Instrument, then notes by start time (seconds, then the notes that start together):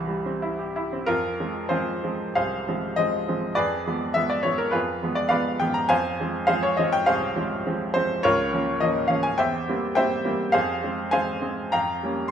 grand piano
Already playing: C2 E3 C5 G#5 C6
0.08 G3
0.26 C4
0.42 E4
0.59 G4
0.76 E4
0.93 C4
1.06 F2 F4 A#4
1.40 F3 G#3 C4
1.69 F3 G#3 C4 F4 G#4 C5
2.03 F3 G#3 C4
2.35 C2 G#4 C5 F5
2.68 F3 G#3 C4
2.96 F3 G#3 C4 D#5
3.28 F3 G#3 C4
3.55 F2 G#4 B4 D5
3.87 F3 G#3 B3
4.14 F3 G#3 B3 E5
4.30 D5
4.43 F3 G#3 B3 C#5
4.58 A#4
4.71 F2 F4 G#4 B4
5.03 F3 G#3 B3
5.15 D5
5.29 F3 G#3 B3 B4 D5 F5
5.60 F3 G#3 B3 G5
5.74 A#5
5.89 F2 C5 F5 G#5
6.20 F3 G#3 C4
6.47 F3 G#3 C4 G#4 C5 F5
6.63 C#5
6.77 F3 G#3 C4 D#5
6.93 G5
7.06 C2 G#4 C5 F5
7.36 F3 G#3 C4
7.67 F3 G#3 C4
7.94 F3 G#3 C4 C5
8.23 C#2 F4 A#4 C#5
8.53 F3 A#3 C#4
8.80 F3 A#3 C#4 D#5
9.08 F3 A#3 C#4 F5
9.23 G#5
9.38 E2 C5 E5 G5
9.68 G3 A#3 C4
9.95 G3 A#3 C4 C5 E5 G5
10.25 G3 A#3 C4
10.52 F2 G#4 C5 F5
10.84 G#3 C4
11.11 G#3 C4 C5 F5 G#5
11.42 G#3 C4
11.72 F2 F5 G5 A#5
12.03 G3 A#3 C#4